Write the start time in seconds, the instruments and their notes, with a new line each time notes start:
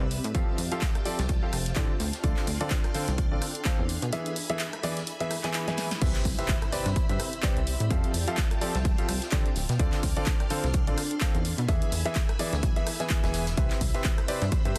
Already playing: ambient pad C4 G4 D5 E5, string machine B4 B5 E6
0.01 analog synth bass C2
0.10 closed hi-hat, open hi-hat
0.24 analog synth bass A2, closed hi-hat
0.35 analog synth bass F2, grand piano F3 C4 G4 A4 F5, string machine F4 G5 A5, ambient pad F4, kick, closed hi-hat
0.49 ambient pad C5
0.58 analog synth bass F2, closed hi-hat, open hi-hat
0.72 grand piano F3 C4 G4 A4 F5, closed hi-hat
0.81 kick, snare, clap, closed hi-hat
0.95 cross-stick, closed hi-hat
1.05 grand piano F3 C4 G4 A4 D5, closed hi-hat, open hi-hat
1.09 ambient pad G5 A5
1.19 analog synth bass C2, snare, closed hi-hat
1.29 kick, closed hi-hat
1.43 grand piano F3 C4 G4 A4 F5
1.53 analog synth bass F1, cross-stick, closed hi-hat, open hi-hat
1.66 snare, closed hi-hat
1.76 analog synth bass A2, grand piano D3 C4 G4 A4 D5, kick, snare, clap, closed hi-hat
2.00 analog synth bass D2, ambient pad D4, string machine D5 C6 F6, snare, closed hi-hat, open hi-hat
2.13 snare, closed hi-hat
2.24 analog synth bass D2, grand piano D3 C4 F4 A4 D5, kick, closed hi-hat
2.30 ambient pad A4
2.36 snare, clap
2.47 analog synth bass D2, open hi-hat
2.61 grand piano D3 C4 F4 A4 D5, closed hi-hat
2.70 kick, snare, clap, closed hi-hat
2.84 ambient pad F5, cross-stick, closed hi-hat
2.94 grand piano D3 C4 F4 A4 C5, closed hi-hat, open hi-hat
3.08 analog synth bass C2, snare, closed hi-hat
3.18 kick, closed hi-hat
3.31 analog synth bass A1, grand piano D3 C4 F4 A4 D5
3.41 cross-stick, closed hi-hat, open hi-hat
3.55 closed hi-hat
3.65 grand piano C4 F4 A4 C5, kick, snare, clap, closed hi-hat
3.79 analog synth bass E2
3.89 ambient pad E4, string machine E5 G#5 B5, closed hi-hat, open hi-hat
4.02 analog synth bass B2, closed hi-hat
4.10 grand piano E3 B3 E4 G#4 E5, ambient pad B5, closed hi-hat
4.26 closed hi-hat
4.36 closed hi-hat, open hi-hat
4.50 grand piano E3 B3 E4 G#4 E5, closed hi-hat
4.59 snare, clap, closed hi-hat
4.73 cross-stick, closed hi-hat
4.83 grand piano E3 B3 E4 G#4 D5, ambient pad E5 G#5, closed hi-hat, open hi-hat
4.97 snare, closed hi-hat
5.07 closed hi-hat
5.20 grand piano E3 B3 E4 G#4 E5, closed hi-hat
5.31 cross-stick, closed hi-hat, open hi-hat
5.43 grand piano E3 B3 E4 G#4 G#5, snare, clap, closed hi-hat
5.54 clap, closed hi-hat
5.68 grand piano E3 B3 E4 G#4 G#5, snare, closed hi-hat
5.77 snare, closed hi-hat, open hi-hat
5.91 snare, closed hi-hat
6.02 analog synth bass C2, grand piano C3 C4 G4 B4 E5, ambient pad C4, string machine C5 B5 E6, kick, closed hi-hat, crash, impact
6.14 snare, clap, closed hi-hat
6.25 analog synth bass C2, kick, open hi-hat
6.39 grand piano C3 C4 G4 B4 E5, closed hi-hat
6.48 kick, snare, clap, closed hi-hat
6.57 ambient pad G4
6.62 cross-stick, closed hi-hat
6.72 grand piano C3 C4 G4 B4 D5, ambient pad D5, closed hi-hat, open hi-hat
6.86 analog synth bass G2, snare, closed hi-hat
6.96 kick, closed hi-hat
7.09 analog synth bass G2, grand piano C3 C4 G4 B4 E5, closed hi-hat
7.19 cross-stick, closed hi-hat, open hi-hat
7.33 closed hi-hat
7.43 grand piano C3 C4 G4 B4 D5, kick, snare, clap, closed hi-hat
7.57 analog synth bass C2, closed hi-hat
7.67 closed hi-hat, open hi-hat
7.80 analog synth bass A2, closed hi-hat
7.90 analog synth bass F2, grand piano F3 C4 G4 A4 F5, string machine F4 G5 A5, ambient pad F4, kick, closed hi-hat
8.04 closed hi-hat
8.08 ambient pad G5
8.14 analog synth bass F2, closed hi-hat, open hi-hat
8.28 grand piano F3 C4 G4 A4 F5, closed hi-hat
8.37 kick, snare, clap, closed hi-hat
8.44 ambient pad C5
8.51 cross-stick, closed hi-hat
8.61 grand piano F3 C4 G4 A4 D5, closed hi-hat, open hi-hat
8.65 ambient pad A5
8.75 analog synth bass C2, snare, closed hi-hat
8.85 analog synth bass C2, kick, closed hi-hat
8.98 grand piano F3 C4 G4 A4 F5, closed hi-hat
9.09 analog synth bass C2, cross-stick, closed hi-hat, open hi-hat
9.22 snare, closed hi-hat
9.32 grand piano D3 C4 G4 A4 D5, kick, snare, clap, closed hi-hat
9.46 closed hi-hat
9.55 analog synth bass D1, ambient pad D4, string machine D5 C6 F6, snare, closed hi-hat, open hi-hat
9.69 analog synth bass B2, snare, closed hi-hat
9.76 analog synth bass D2, grand piano D3 C4 F4 A4 D5, ambient pad A4, kick, closed hi-hat
9.80 closed hi-hat
9.92 snare, clap, closed hi-hat
10.03 analog synth bass D2, kick, open hi-hat
10.16 grand piano D3 C4 F4 A4 D5, closed hi-hat
10.26 kick, snare, clap, closed hi-hat
10.40 ambient pad F5, cross-stick, closed hi-hat
10.50 grand piano D3 C4 F4 A4 C5, closed hi-hat, open hi-hat
10.64 analog synth bass C2, snare, closed hi-hat
10.73 kick, closed hi-hat
10.87 analog synth bass A1, grand piano D3 C4 F4 A4 D5, closed hi-hat
10.98 cross-stick, closed hi-hat, open hi-hat
11.11 closed hi-hat
11.21 grand piano C4 F4 A4 C5, kick, snare, clap, closed hi-hat
11.35 analog synth bass E2, closed hi-hat
11.45 ambient pad E4, string machine E5 G#5 B5, closed hi-hat, open hi-hat
11.58 analog synth bass B2, closed hi-hat
11.62 ambient pad B5
11.68 analog synth bass E2, grand piano E3 B3 E4 G#4 E5, kick, closed hi-hat
11.82 closed hi-hat
11.92 analog synth bass E2, closed hi-hat, open hi-hat
12.05 grand piano E3 B3 E4 G#4 E5, closed hi-hat
12.15 kick, snare, clap, closed hi-hat
12.29 cross-stick, closed hi-hat
12.39 grand piano E3 B3 E4 G#4 D5, ambient pad E5 G#5, closed hi-hat, open hi-hat
12.53 analog synth bass D2, snare, closed hi-hat
12.63 analog synth bass B1, kick, closed hi-hat
12.76 grand piano E3 B3 E4 G#4 E5, closed hi-hat
12.86 cross-stick, closed hi-hat, open hi-hat
13.00 grand piano E3 B3 E4 G#4 G#5, snare, closed hi-hat
13.09 kick, snare, clap, closed hi-hat
13.23 analog synth bass E1, grand piano E3 B3 E4 G#4 G#5, snare, closed hi-hat
13.33 snare, closed hi-hat, open hi-hat
13.46 snare, closed hi-hat
13.57 analog synth bass C2, grand piano C3 C4 G4 B4 E5, ambient pad C4, string machine C5 B5 E6, kick, closed hi-hat, ride
13.70 snare, clap, closed hi-hat
13.81 analog synth bass C2, kick, open hi-hat, ride
13.88 ambient pad D5
13.94 grand piano C3 C4 G4 B4 E5, ambient pad G4, closed hi-hat
14.04 kick, snare, clap, closed hi-hat, ride
14.18 cross-stick, closed hi-hat
14.28 grand piano C3 C4 G4 B4 D5, closed hi-hat, open hi-hat, ride
14.42 analog synth bass G2, snare, closed hi-hat
14.52 kick, closed hi-hat, ride
14.65 analog synth bass G2, grand piano C3 C4 G4 B4 E5, closed hi-hat
14.75 closed hi-hat